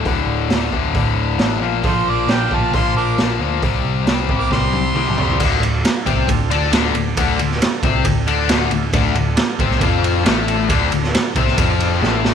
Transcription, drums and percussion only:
0.05 kick, open hi-hat
0.50 snare, open hi-hat
0.72 kick
0.95 kick, open hi-hat
1.39 snare, open hi-hat
1.83 kick, open hi-hat
2.28 snare, open hi-hat
2.51 kick
2.73 kick, open hi-hat
3.18 snare, open hi-hat
3.62 kick, open hi-hat
4.07 snare, open hi-hat
4.29 kick
4.51 kick, snare
4.73 high tom
4.96 mid tom
5.07 mid tom
5.18 floor tom
5.30 floor tom
5.40 kick, crash
5.63 ride
5.85 snare, ride
6.06 kick, ride
6.28 kick, ride
6.51 ride
6.73 snare, ride
6.95 ride
7.17 kick, ride
7.39 ride
7.51 snare
7.62 snare, ride
7.83 kick, ride
8.05 kick, ride
8.28 ride
8.49 snare, ride
8.71 ride
8.93 kick, ride
9.15 ride
9.37 snare, ride
9.59 kick, ride
9.71 snare
9.81 kick, ride
10.04 ride
10.26 snare, ride
10.48 ride
10.69 kick, ride
10.92 ride
11.04 snare
11.14 snare, ride
11.36 kick, ride
11.48 snare
11.58 kick, ride
11.80 ride
12.03 snare
12.25 snare

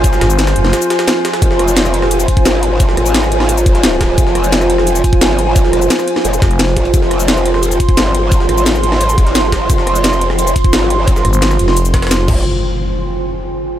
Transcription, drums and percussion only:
0.04 kick, closed hi-hat, shaker
0.13 snare, shaker
0.21 cross-stick, snare, closed hi-hat
0.30 shaker
0.39 snare, closed hi-hat, shaker
0.47 cross-stick, snare, closed hi-hat, shaker
0.56 closed hi-hat
0.65 cross-stick, snare, closed hi-hat
0.73 snare, closed hi-hat, shaker
0.82 closed hi-hat, shaker
0.90 snare, closed hi-hat, shaker
0.99 snare, closed hi-hat
1.08 snare, closed hi-hat, shaker
1.25 snare, closed hi-hat, shaker
1.33 snare, closed hi-hat
1.42 kick, closed hi-hat, shaker
1.51 snare
1.59 cross-stick, closed hi-hat
1.68 shaker
1.77 snare, closed hi-hat, shaker
1.85 cross-stick, shaker
1.94 closed hi-hat
2.02 cross-stick, snare
2.11 closed hi-hat, shaker
2.20 closed hi-hat, shaker
2.28 kick, closed hi-hat, shaker
2.37 kick, closed hi-hat
2.45 snare, closed hi-hat, shaker
2.63 closed hi-hat
2.80 kick, closed hi-hat, shaker
2.89 snare
2.97 cross-stick, closed hi-hat
3.06 shaker
3.14 snare, closed hi-hat, shaker
3.23 cross-stick, snare, shaker
3.32 closed hi-hat
3.40 cross-stick, snare
3.49 closed hi-hat, shaker
3.58 closed hi-hat, shaker
3.66 kick, closed hi-hat, shaker
3.75 snare, closed hi-hat
3.83 snare, closed hi-hat, shaker
4.01 kick, snare, closed hi-hat
4.18 kick, closed hi-hat, shaker
4.27 snare
4.35 cross-stick, closed hi-hat
4.44 shaker
4.52 snare, closed hi-hat, shaker
4.61 cross-stick, shaker
4.70 closed hi-hat
4.78 cross-stick, snare
4.87 closed hi-hat, shaker
4.96 closed hi-hat, shaker
5.04 kick, closed hi-hat, shaker
5.13 kick, closed hi-hat
5.21 snare, closed hi-hat, shaker
5.39 closed hi-hat
5.56 kick, closed hi-hat, shaker
5.65 snare
5.73 cross-stick, closed hi-hat
5.82 shaker
5.90 snare, closed hi-hat, shaker
5.99 cross-stick, snare, shaker
6.08 closed hi-hat
6.16 cross-stick, snare
6.25 closed hi-hat, shaker
6.33 closed hi-hat, shaker
6.42 kick, snare, closed hi-hat, shaker
6.51 closed hi-hat
6.59 snare, closed hi-hat, shaker
6.68 snare
6.77 kick, closed hi-hat
6.85 closed hi-hat
6.94 kick, closed hi-hat, shaker
7.02 snare
7.11 cross-stick, closed hi-hat
7.20 shaker
7.28 snare, closed hi-hat, shaker
7.37 cross-stick, shaker
7.46 closed hi-hat
7.54 cross-stick, snare
7.63 closed hi-hat, shaker
7.71 closed hi-hat, shaker
7.80 kick, closed hi-hat, shaker
7.89 kick, closed hi-hat
7.97 snare, closed hi-hat, shaker
8.15 closed hi-hat
8.32 kick, closed hi-hat, shaker
8.40 snare
8.49 cross-stick, closed hi-hat
8.58 shaker
8.66 snare, closed hi-hat, shaker
8.75 cross-stick, snare, shaker
8.83 closed hi-hat
8.92 cross-stick, snare
9.01 closed hi-hat, shaker
9.09 closed hi-hat, shaker
9.18 kick, closed hi-hat, shaker
9.27 snare, closed hi-hat
9.35 snare, closed hi-hat, shaker
9.52 kick, snare, closed hi-hat
9.70 kick, closed hi-hat, shaker
9.78 snare
9.87 cross-stick, closed hi-hat
9.96 shaker
10.04 snare, closed hi-hat, shaker
10.13 cross-stick, shaker
10.21 closed hi-hat
10.30 cross-stick, snare
10.39 closed hi-hat, shaker
10.47 closed hi-hat, shaker
10.56 kick, closed hi-hat, shaker
10.64 kick, closed hi-hat
10.73 snare, closed hi-hat, shaker
10.90 closed hi-hat
11.08 kick, closed hi-hat, shaker
11.16 snare, shaker
11.25 cross-stick, closed hi-hat
11.33 shaker
11.42 snare, closed hi-hat, shaker
11.51 cross-stick, snare, shaker
11.59 closed hi-hat
11.68 cross-stick, snare
11.77 closed hi-hat, shaker
11.85 closed hi-hat, shaker
11.94 kick, snare, closed hi-hat, shaker
12.02 snare, closed hi-hat
12.07 snare, closed hi-hat
12.11 snare, closed hi-hat, shaker
12.28 kick, crash

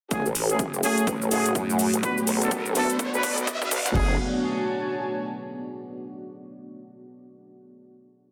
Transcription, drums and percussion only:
0.11 kick, closed hi-hat, shaker
0.26 shaker
0.35 open hi-hat, shaker
0.50 closed hi-hat, shaker
0.59 kick, closed hi-hat, shaker
0.74 shaker
0.83 open hi-hat, shaker
0.98 closed hi-hat, shaker
1.07 kick, closed hi-hat, shaker
1.22 shaker
1.31 open hi-hat, shaker
1.46 closed hi-hat, shaker
1.55 kick, closed hi-hat, shaker
1.70 shaker
1.79 open hi-hat, shaker
1.94 closed hi-hat, shaker
2.03 kick, closed hi-hat, shaker
2.18 shaker
2.27 open hi-hat, shaker
2.42 closed hi-hat, shaker
2.51 kick, closed hi-hat, shaker
2.66 shaker
2.75 open hi-hat, shaker
2.90 closed hi-hat, shaker
2.99 kick, closed hi-hat, shaker
3.14 shaker
3.23 kick, open hi-hat, shaker
3.38 closed hi-hat, shaker
3.47 kick, closed hi-hat, shaker
3.62 kick, shaker
3.71 kick, open hi-hat, shaker
3.86 kick, closed hi-hat, shaker
3.95 kick, crash

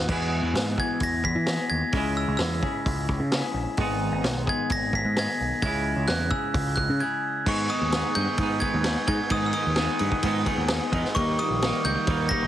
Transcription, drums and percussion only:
0.09 kick, crash
0.55 snare, open hi-hat
0.78 kick
1.00 kick, open hi-hat
1.24 kick
1.46 snare, open hi-hat
1.92 kick, open hi-hat
2.39 snare, open hi-hat
2.63 kick
2.86 kick, open hi-hat
3.09 kick
3.32 snare, open hi-hat
3.77 kick, open hi-hat
4.24 snare, open hi-hat
4.47 kick
4.70 kick, open hi-hat
4.93 kick
5.17 snare, open hi-hat
5.62 kick, open hi-hat
6.08 snare, open hi-hat
6.31 kick
6.54 kick, open hi-hat
6.77 kick
7.46 kick, crash
7.70 ride
7.92 snare, ride
8.15 ride
8.38 kick, ride
8.61 kick, ride
8.84 snare, ride
9.07 kick, ride
9.30 kick, ride
9.53 ride
9.76 snare, ride
9.99 ride
10.12 kick
10.23 kick, ride
10.46 kick, ride
10.68 snare, ride
10.93 kick, ride
11.05 snare
11.16 kick, ride
11.39 ride
11.62 snare, ride
11.86 ride
12.07 kick, ride
12.31 kick, ride

